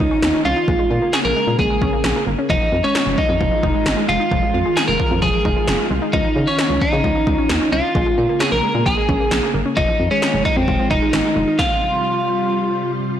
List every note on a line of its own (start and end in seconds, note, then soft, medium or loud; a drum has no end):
0.00 0.66 D#3 medium
0.00 0.66 C#4 medium
0.00 0.41 D#4 medium
0.00 0.66 F4 medium
0.00 kick medium
0.11 0.20 C#4 medium
0.22 0.31 D#2 loud
0.22 snare loud
0.34 0.43 C#4 medium
0.45 0.54 C2 medium
0.45 0.54 C#4 medium
0.45 1.15 F4 medium
0.57 0.66 D#4 medium
0.68 0.77 A#1 loud
0.68 2.48 C#3 medium
0.68 0.77 G#3 medium
0.68 2.48 A#3 medium
0.68 2.48 G#4 medium
0.68 kick loud
0.79 0.88 G#3 medium
0.91 0.99 A#2 loud
1.02 1.11 A#3 medium
1.13 1.22 C#4 medium
1.13 1.19 G#4 loud
1.13 snare loud
1.25 1.33 A#1 medium
1.25 1.34 A#3 medium
1.25 1.59 A#4 loud
1.36 1.45 G#3 medium
1.47 1.56 A#2 loud
1.47 1.57 G#3 medium
1.59 1.68 A#1 loud
1.59 1.68 G#3 medium
1.59 2.23 G#4 medium
1.59 kick medium
1.70 1.79 G#3 medium
1.82 1.90 A#1 medium
1.82 1.91 C#4 medium
1.82 kick medium
1.93 2.02 A#3 medium
2.04 2.13 A#1 loud
2.04 snare loud
2.16 2.25 A#3 medium
2.27 2.36 G1 medium
2.27 2.36 A#3 medium
2.39 2.48 C#4 medium
2.50 2.58 F1 loud
2.50 7.91 D#3 medium
2.50 2.59 F3 medium
2.50 6.10 G#3 medium
2.50 2.85 D#4 medium
2.50 7.91 F4 medium
2.50 kick loud
2.61 2.70 F3 medium
2.72 2.81 F2 loud
2.84 2.93 G#3 medium
2.84 3.19 C#4 medium
2.95 3.04 D#4 medium
2.95 snare loud
3.06 3.15 F1 medium
3.06 3.15 G#3 medium
3.18 3.27 F3 medium
3.18 4.05 D#4 medium
3.18 kick medium
3.29 3.38 F2 loud
3.29 3.38 F3 medium
3.40 3.49 F1 loud
3.40 3.50 F3 medium
3.40 kick medium
3.52 3.61 F3 medium
3.63 3.72 F1 loud
3.63 3.72 D#4 medium
3.63 kick medium
3.74 3.84 G#3 medium
3.86 3.95 G1 medium
3.86 snare loud
3.97 4.06 G#3 medium
4.08 4.17 F1 medium
4.08 4.18 G#3 medium
4.08 4.79 F4 loud
4.20 4.29 D#4 medium
4.31 4.40 F1 loud
4.31 4.40 F3 medium
4.31 kick loud
4.43 4.52 F3 medium
4.54 4.63 F2 medium
4.65 4.75 G#3 medium
4.77 4.86 D#4 medium
4.77 4.87 G#4 loud
4.77 snare loud
4.88 4.97 F1 medium
4.88 4.97 G#3 medium
4.88 5.22 A#4 loud
5.00 5.09 F3 medium
5.00 kick medium
5.11 5.20 F2 loud
5.11 5.20 F3 medium
5.22 5.31 F1 loud
5.22 5.32 F3 medium
5.22 5.86 G#4 medium
5.22 kick medium
5.34 5.43 F3 medium
5.45 5.54 F1 loud
5.45 5.54 D#4 medium
5.45 kick medium
5.56 5.66 G#3 medium
5.68 5.77 F1 medium
5.68 snare loud
5.79 5.88 G#3 medium
5.91 5.99 C2 medium
5.91 6.00 G#3 medium
6.02 6.11 D#4 medium
6.13 6.22 C#2 loud
6.13 6.22 F3 medium
6.13 7.93 C#4 medium
6.13 6.48 D#4 medium
6.13 kick loud
6.25 6.34 F3 medium
6.36 6.45 C#3 loud
6.47 6.82 C#4 medium
6.47 6.57 C#4 medium
6.59 6.68 D#4 medium
6.59 snare loud
6.70 6.79 C#2 medium
6.70 6.79 C#4 medium
6.81 6.90 F3 medium
6.81 7.72 D#4 medium
6.81 kick medium
6.93 7.02 C#3 loud
6.93 7.02 F3 medium
7.04 7.13 C#2 loud
7.04 7.13 F3 medium
7.04 kick medium
7.15 7.25 F3 medium
7.27 7.36 C#2 loud
7.27 7.36 D#4 medium
7.27 kick medium
7.38 7.47 C#4 medium
7.49 7.58 D#2 medium
7.49 snare loud
7.61 7.70 C#4 medium
7.72 7.81 C2 medium
7.72 7.81 C#4 medium
7.72 8.43 F4 medium
7.84 7.93 D#4 medium
7.95 8.04 A#1 loud
7.95 9.75 C#3 medium
7.95 8.04 G#3 medium
7.95 9.75 A#3 medium
7.95 9.75 G#4 medium
7.95 kick loud
8.06 8.15 G#3 medium
8.18 8.27 A#2 loud
8.29 8.38 A#3 medium
8.40 8.50 C#4 medium
8.40 8.52 G#4 loud
8.40 snare loud
8.52 8.61 A#1 loud
8.52 8.61 A#3 medium
8.52 8.84 A#4 loud
8.63 8.72 G#3 medium
8.75 8.84 A#2 loud
8.75 8.84 G#3 medium
8.86 8.95 A#1 loud
8.86 8.95 G#3 medium
8.86 9.50 G#4 medium
8.86 kick medium
8.97 9.06 G#3 medium
9.09 9.18 A#1 medium
9.09 9.18 C#4 medium
9.09 kick medium
9.20 9.29 A#3 medium
9.31 9.40 A#1 medium
9.31 snare loud
9.43 9.52 A#3 medium
9.54 9.63 G1 loud
9.54 9.63 A#3 medium
9.66 9.75 C#4 medium
9.77 9.86 F1 loud
9.77 11.57 D#3 medium
9.77 9.86 F3 medium
9.77 11.57 G#3 medium
9.77 10.11 D#4 medium
9.77 13.20 F4 medium
9.77 kick loud
9.88 9.97 F3 medium
10.00 10.08 F2 loud
10.11 10.20 G#3 medium
10.11 10.45 C#4 medium
10.22 10.31 D#4 medium
10.22 snare loud
10.34 10.43 F1 medium
10.34 10.43 G#3 medium
10.45 10.54 F3 medium
10.45 10.57 D#4 medium
10.45 kick loud
10.57 10.65 F2 loud
10.57 10.66 F3 medium
10.57 10.90 C4 medium
10.68 10.77 F1 loud
10.68 10.77 F3 medium
10.68 kick medium
10.79 10.88 F3 medium
10.91 10.99 F1 medium
10.91 11.61 D#4 medium
10.91 11.00 D#4 medium
10.91 kick medium
11.02 11.11 G#3 medium
11.13 11.22 G#1 medium
11.13 snare loud
11.25 11.34 G#3 medium
11.36 11.45 F1 medium
11.36 11.45 G#3 medium
11.48 11.57 D#4 medium
11.59 13.20 C3 medium
11.59 13.20 G3 medium
11.59 12.91 F4 loud
11.59 kick loud
11.59 snare medium